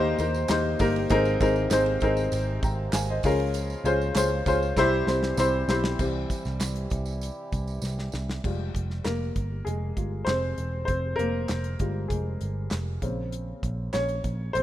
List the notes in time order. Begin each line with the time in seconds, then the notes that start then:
Already playing: D#2 A#2 D#3 F3 A#3 D#4 G4 A#4 C5
0.19 D#2 A#3 D#4 G4 A#4, ride, tambourine
0.34 tambourine
0.48 D#2 A#3 D#4 G4 C5, snare, clap, ride, tambourine
0.79 G1 A#3 D#4 G4 A#4, kick, open hi-hat, ride, tambourine
0.96 ride
1.10 G#1 G#2 C3 D#3 G#3 A#3 C4 D#4 G#4 A#4, kick, hi-hat pedal, ride, tambourine
1.25 tambourine
1.40 G#1 C4 D#4 G#4 A#4, kick, ride, tambourine
1.56 tambourine
1.71 G#1 C4 D#4 G#4 C5, snare, clap, ride, tambourine
1.86 ride
2.00 G#1 C4 D#4 G#4 A#4, kick, ride, tambourine
2.17 tambourine
2.32 G#1, ride, tambourine
2.63 G#1 G5 A#5, kick, ride, tambourine
2.93 G#1 F5 G#5, snare, clap, ride, tambourine
3.10 C5 D#5
3.23 C#2 C#3 F3 G#3 A#3 C#4 F4 G#4 A#4, kick, open hi-hat, ride, tambourine
3.40 ride
3.54 hi-hat pedal, ride, tambourine
3.70 tambourine
3.84 C#2 C#4 F4 G#4 C5, ride, tambourine
4.01 tambourine
4.15 C#2 C#4 F4 G#4 C5, snare, clap, ride, tambourine
4.46 C#2 C#4 F4 G#4 C5, kick, ride, tambourine
4.62 tambourine
4.76 C2 C3 E3 G3 C4 E4 G4 C5, kick, snare, tambourine
5.07 C2 C4 E4 G4 C5, snare, tambourine
5.23 snare
5.37 C2 C4 E4 G4 C5, snare, tambourine
5.68 B1 C4 E4 G4 C5, snare, tambourine
5.84 snare
5.99 C2 C3 E3 G3 C4 E4 G4, kick, crash, tambourine
6.30 kick, closed hi-hat, tambourine
6.45 C2, snare, tambourine
6.60 C2, snare, clap, closed hi-hat, tambourine
6.76 closed hi-hat
6.90 C2, kick, closed hi-hat, tambourine
7.06 tambourine
7.21 closed hi-hat, tambourine
7.52 C2, kick, closed hi-hat, tambourine
7.67 tambourine
7.82 C2, snare, tambourine
7.99 snare
8.12 C2, snare, tambourine
8.30 snare
8.44 F1 G3 G#3 F4, kick, crash
8.74 F1, kick, closed hi-hat
8.90 snare
9.04 F1 A#3 A#4, snare, clap, closed hi-hat
9.36 G1, kick, closed hi-hat
9.65 F1 G#3 G#4, closed hi-hat
9.97 G1 G#3 F4 G4, kick, closed hi-hat
10.25 F1 C5, snare, clap, closed hi-hat
10.29 C4
10.58 E1, closed hi-hat
10.85 F1 C5, kick, closed hi-hat
10.89 C4
11.16 F1 A#3 A#4, closed hi-hat
11.49 F1, snare, clap, closed hi-hat
11.64 closed hi-hat
11.79 G1 G3 G#3 F4, kick, closed hi-hat
12.08 F1 G#3 G#4, kick, closed hi-hat
12.41 G1, closed hi-hat
12.71 F1, snare, clap, closed hi-hat
13.02 A#1 C#3 A#3 C4, kick, closed hi-hat
13.32 closed hi-hat
13.63 A#1, kick, closed hi-hat
13.93 A#1 C#4 C#5, snare, clap, closed hi-hat
14.09 closed hi-hat
14.24 A#1, kick, closed hi-hat
14.53 A#1 C4 C5, closed hi-hat